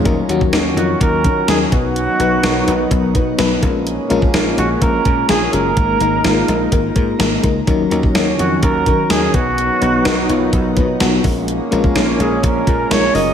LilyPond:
<<
  \new Staff \with { instrumentName = "Flugelhorn" } { \time 4/4 \key ees \minor \tempo 4 = 126 r4. ges'8 bes'4 aes'8 fis'8~ | fis'2~ fis'8 r4. | r4. ges'8 bes'4 aes'8 bes'8~ | bes'2~ bes'8 r4. |
r4. ges'8 bes'4 aes'8 fis'8~ | fis'2~ fis'8 r4. | r4. aes'8 bes'4 des''8 ees''8 | }
  \new Staff \with { instrumentName = "FM electric piano" } { \time 4/4 \key ees \minor <ges des' ees' bes'>8 <ges des' ees' ges'>8 <ges des' ees' bes'>8 <ges des' ees' f'>8 <ges des' ees' bes'>8 <ges des' ees' bes'>8 <ges des' ees' bes'>8 <fis b dis' b'>8~ | <fis b dis' b'>8 <fis b dis' b'>8 <fis b dis' bes'>8 <fis b dis' b'>8 <fis b dis' b'>8 <fis b dis' b'>8 <fis b dis' b'>8 <aes des' f' bes'>8~ | <aes des' f' bes'>8 <aes des' f' bes'>8 <aes des' f' bes'>8 <aes des' f' aes'>8 <aes des' f' bes'>8 <aes des' bes'>8 <aes des' f' aes'>8 <aes des' f' bes'>8 | <aes bes ees' bes'>8 <aes bes ees' bes'>8 <aes bes ees' f'>8 <aes bes ees' bes'>8 <aes bes ees' bes'>8 <aes bes ees' bes'>8 <aes bes ees' bes'>8 <aes bes ees' bes'>8 |
<ges des' ees' bes'>8 <ges des' ees' bes'>8 <ges des' ees' bes'>8 <ges des' ees' bes'>8 <ges des' ees' bes'>8 <ges des' ees' bes'>8 <ges des' ees' bes'>8 <fis b dis' b'>8~ | <fis b dis' b'>8 <fis b dis' b'>8 <fis b dis' bes'>8 <fis b dis' f'>8 <fis b dis' b'>8 <fis b dis' b'>8 <fis b dis' fis'>8 <aes des' f' bes'>8~ | <aes des' f' bes'>8 <aes des' f' bes'>8 <aes des' f' des''>8 <aes des' f' bes'>8 <aes des' f' aes'>8 <aes des' f' bes'>8 <aes des' f' bes'>8 <aes des' f' bes'>8 | }
  \new Staff \with { instrumentName = "Analog synth pad" } { \time 4/4 \key ees \minor << { <des' ges'>2.~ <des' ges'>8 <b dis'>8~ | <b dis'>2.~ <b dis'>8 <bes des'>8~ | <bes des'>1 | <ees' bes'>1 |
<des' ges'>2.~ <des' ges'>8 <b dis'>8~ | <b dis'>2.~ <b dis'>8 <bes des'>8~ | <bes des'>1 | } \\ { ees2.~ ees8 fis8~ | fis2.~ fis8 aes8~ | aes1~ | aes1 |
ees2.~ ees8 fis8~ | fis2.~ fis8 aes8~ | aes1 | } >> }
  \new Staff \with { instrumentName = "Slap bass" } { \clef bass \time 4/4 \key ees \minor ees,8 ees,8 ees,8 f,8 ees,8 ees8 ees,8 b,,8~ | b,,8 b,,8 b,,8 b,,8 b,,8 b,8 b,,8 bes,,8~ | bes,,8 bes,,8 bes,,8 bes,,8 bes,,8 bes,8 bes,,8 ges,,8 | aes,,8 aes,,8 aes,,8 bes,,8 aes,,8 aes,8 aes,,8 des,8 |
ees,8 ees,8 ees,8 f,8 ees,8 ees8 ees,8 b,,8~ | b,,8 b,,8 b,,8 b,,8 b,,8 b,8 b,,8 bes,,8~ | bes,,8 bes,,8 bes,,8 bes,,8 bes,,8 bes,8 bes,,8 ges,,8 | }
  \new DrumStaff \with { instrumentName = "Drums" } \drummode { \time 4/4 <hh bd>8 hh16 bd16 <hh sn>8 hh8 <hh bd>8 <hh bd>8 <hh sn>8 <hh bd>8 | hh8 hh8 <hh sn>8 hh8 <hh bd>8 <hh bd>8 <hh sn>8 <hh bd>8 | hh8 hh16 bd16 <hh sn>8 hh8 <hh bd>8 <hh bd>8 <hh sn>8 hh8 | <hh bd>8 hh8 <hh sn>8 hh8 <hh bd>8 <hh bd>8 <hh sn>8 <hh bd>8 |
<hh bd>8 hh16 bd16 <hh sn>8 hh8 <hh bd>8 <hh bd>8 <hh sn>8 <hh bd>8 | hh8 hh8 <hh sn>8 hh8 <hh bd>8 <hh bd>8 <hh sn>8 <hho bd>8 | hh8 hh16 bd16 <hh sn>8 hh8 <hh bd>8 <hh bd>8 <hh sn>8 hho8 | }
>>